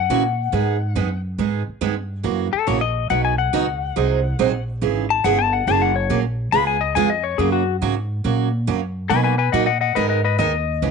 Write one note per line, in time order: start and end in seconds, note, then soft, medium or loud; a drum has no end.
0.00 1.20 F#5 loud
0.10 0.52 A#2 medium
0.10 0.22 C#3 medium
0.10 0.22 E3 medium
0.10 0.22 A#3 medium
0.10 0.22 C#4 medium
0.10 0.23 F#4 medium
0.52 0.94 G#2 medium
0.52 0.75 D#3 medium
0.52 0.76 G#3 medium
0.52 0.76 B3 medium
0.52 0.76 D#4 medium
0.52 0.76 G#4 medium
0.95 1.37 F#2 medium
0.95 1.08 D#3 medium
0.95 1.08 G#3 medium
0.95 1.08 B3 medium
0.95 1.08 D#4 medium
0.95 1.08 G#4 medium
1.38 1.65 G#2 medium
1.38 1.61 D#3 medium
1.38 1.62 G#3 medium
1.38 1.62 B3 medium
1.38 1.62 D#4 medium
1.38 1.62 G#4 medium
1.68 muted upright bass stroke soft
1.81 2.23 G2 medium
1.81 1.93 D#3 medium
1.81 1.94 G#3 medium
1.81 1.94 B3 medium
1.81 1.94 D#4 medium
1.81 1.94 G#4 medium
2.23 2.51 F#2 loud
2.23 2.47 C#3 medium
2.23 2.47 E3 medium
2.23 2.47 A#3 medium
2.23 2.47 C#4 medium
2.23 2.47 F#4 medium
2.53 2.67 A4 medium
2.53 muted upright bass stroke soft
2.67 3.09 A#1 medium
2.67 2.79 C#3 medium
2.67 2.79 E3 medium
2.67 2.79 A#3 medium
2.67 2.79 C#4 medium
2.67 2.80 F#4 medium
2.67 2.81 C#5 medium
2.81 3.09 D#5 loud
3.10 3.52 B1 medium
3.10 3.33 B2 medium
3.10 3.33 F#3 medium
3.10 3.33 B3 medium
3.10 3.33 D#4 medium
3.10 3.33 F#4 medium
3.10 3.24 F#5 medium
3.25 3.38 G#5 medium
3.38 4.63 F#5 medium
3.53 3.95 C#2 medium
3.53 3.65 B2 medium
3.53 3.65 F#3 medium
3.53 3.65 B3 medium
3.53 3.65 D#4 medium
3.53 3.65 F#4 medium
3.96 4.38 C2 medium
3.96 4.19 C3 medium
3.96 4.19 F#3 medium
3.96 4.19 C4 medium
3.96 4.19 D#4 medium
3.96 4.19 G#4 medium
3.96 4.19 C5 medium
4.39 4.81 A#1 medium
4.39 4.51 C3 medium
4.39 4.51 F#3 medium
4.39 4.51 C4 medium
4.39 4.51 D#4 medium
4.39 4.51 G#4 medium
4.39 4.51 C5 medium
4.81 5.23 G#1 medium
4.81 5.04 C#3 medium
4.81 5.05 E3 medium
4.81 5.05 B3 medium
4.81 5.05 C#4 medium
4.81 5.05 G#4 medium
5.10 5.24 A5 loud
5.24 5.66 G1 medium
5.24 5.36 C#3 medium
5.24 5.37 E3 medium
5.24 5.37 B3 medium
5.24 5.37 C#4 medium
5.24 5.37 G#4 loud
5.24 5.38 F#5 loud
5.39 5.53 A5 loud
5.53 5.67 F#5 medium
5.67 6.09 F#1 medium
5.67 5.90 F#3 medium
5.67 5.90 A#3 medium
5.67 5.90 C#4 medium
5.67 5.90 G#4 medium
5.67 5.81 A5 loud
5.82 5.95 F#5 medium
5.96 6.19 C#5 loud
6.10 6.52 A#1 medium
6.10 6.22 F#3 medium
6.10 6.22 A#3 medium
6.10 6.22 C#4 medium
6.10 6.22 G#4 medium
6.52 6.94 C#2 medium
6.52 6.76 C#3 medium
6.52 6.76 G#3 medium
6.52 6.76 B3 medium
6.52 6.76 F4 medium
6.52 6.76 G#4 medium
6.52 6.67 B5 loud
6.67 6.81 G#5 medium
6.81 6.95 D#5 medium
6.95 7.37 F2 medium
6.95 7.08 C#3 medium
6.95 7.08 G#3 medium
6.95 7.08 B3 medium
6.95 7.08 F4 medium
6.95 7.08 G#4 medium
6.95 7.09 G#5 loud
7.10 7.24 D#5 medium
7.24 7.38 C#5 medium
7.38 7.80 F#2 medium
7.38 7.62 C#3 medium
7.38 7.62 F#3 medium
7.38 7.62 A#3 medium
7.38 7.62 C#4 medium
7.38 7.62 F#4 medium
7.38 7.52 G#4 medium
7.52 7.76 F#4 loud
7.82 8.23 G#2 medium
7.82 7.94 C#3 medium
7.82 7.94 F#3 medium
7.82 7.94 A#3 medium
7.82 7.94 C#4 medium
7.82 7.94 F#4 medium
8.24 8.66 A#2 medium
8.24 8.47 C#3 medium
8.24 8.47 F#3 medium
8.24 8.47 A#3 medium
8.24 8.48 C#4 medium
8.24 8.48 F#4 medium
8.67 9.09 F#2 medium
8.67 8.79 C#3 medium
8.67 8.80 F#3 medium
8.67 8.80 A#3 medium
8.67 8.80 C#4 medium
8.67 8.80 F#4 medium
9.10 9.52 B2 medium
9.10 9.33 B2 medium
9.10 9.33 F#3 medium
9.10 9.33 A#3 medium
9.10 9.33 D#4 medium
9.10 9.34 F#4 medium
9.10 9.22 B4 medium
9.10 9.23 G#5 medium
9.23 9.37 B4 medium
9.23 9.38 G#5 medium
9.38 9.52 B4 medium
9.38 9.52 G#5 medium
9.52 9.95 A#2 medium
9.52 9.65 B2 medium
9.52 9.66 F#3 medium
9.52 9.66 A#3 medium
9.52 9.66 D#4 medium
9.52 9.66 F#4 medium
9.52 9.65 D#5 medium
9.52 9.66 F#5 medium
9.66 9.80 D#5 medium
9.66 9.80 F#5 medium
9.81 9.94 D#5 medium
9.81 9.95 F#5 medium
9.95 10.38 G#2 medium
9.95 10.19 D#3 medium
9.95 10.19 G#3 soft
9.95 10.19 B3 medium
9.95 10.19 D#4 medium
9.95 10.20 A#4 medium
9.95 10.08 B4 medium
9.95 10.09 D#5 medium
10.09 10.23 B4 medium
10.09 10.24 D#5 medium
10.24 10.38 B4 medium
10.24 10.38 D#5 medium
10.39 10.81 D#2 loud
10.39 10.51 D#3 medium
10.39 10.51 G#3 medium
10.39 10.51 B3 medium
10.39 10.51 D#4 medium
10.39 10.52 A#4 medium
10.39 10.91 D#5 loud
10.82 10.91 C#2 medium
10.82 10.91 C#3 medium
10.82 10.91 E3 medium
10.82 10.91 B3 medium
10.82 10.91 C#4 medium
10.82 10.91 G#4 medium